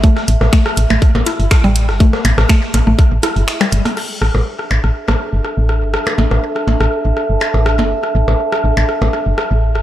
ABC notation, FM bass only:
X:1
M:4/4
L:1/16
Q:1/4=122
K:C
V:1 name="FM bass" clef=bass
z2 A,,, A,,, z2 A,,, A,,, z A,,, z G,,, z A,,,2 G,,, | z2 A,,, A,,, z2 A,,, A,,, z A,,, z G,,, z2 G,,, z | z2 A,,, A,,, z2 A,,, A,,, z A,,, z G,,, z A,,,2 G,,, | z2 A,,, A,,, z2 A,,, A,,, z A,,, z G,,, z A,,,2 G,,, |
z2 A,,, A,,, z2 A,,, A,,, z A,,, z G,,, z A,,,2 G,,, |]